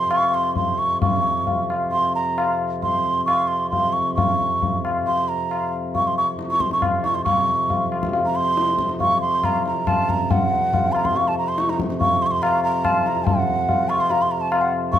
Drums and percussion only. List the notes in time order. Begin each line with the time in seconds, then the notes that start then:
0.11 tabla na
0.56 tabla tin, tabla ge
1.02 tabla tin, tabla ge
1.47 tabla tin, tabla ge
1.70 tabla na
1.92 tabla tin
2.38 tabla na
2.82 tabla tin, tabla ge
3.28 tabla na
3.72 tabla tin, tabla ge
4.18 tabla tin, tabla ge
4.62 tabla tin, tabla ge
4.85 tabla na
5.07 tabla tin
5.51 tabla na
5.95 tabla tin, tabla ge
6.39 tabla te
6.50 tabla te
6.60 tabla ke
6.71 tabla te
6.82 tabla na, tabla ge
7.04 tabla te
7.26 tabla tin, tabla ge
7.70 tabla tin, tabla ge
7.92 tabla na
8.03 tabla ke
8.13 tabla tin
8.57 tabla te
8.68 tabla te
8.79 tabla ke
8.89 tabla te
9.00 tabla tin, tabla ge
9.43 tabla na, tabla ge
9.66 tabla te
9.87 tabla na, tabla ge
10.09 tabla ge
10.31 tabla tin, tabla ge
10.74 tabla tin, tabla ge
10.95 tabla na
11.05 tabla ke
11.15 tabla tin
11.58 tabla te
11.69 tabla te
11.80 tabla ke
11.90 tabla te
12.01 tabla tin, tabla ge
12.43 tabla na
12.85 tabla na, tabla ge
13.06 tabla te
13.27 tabla tin, tabla ge
13.69 tabla tin, tabla ge
13.90 tabla na
14.10 tabla tin
14.52 tabla na
14.93 tabla tin, tabla ge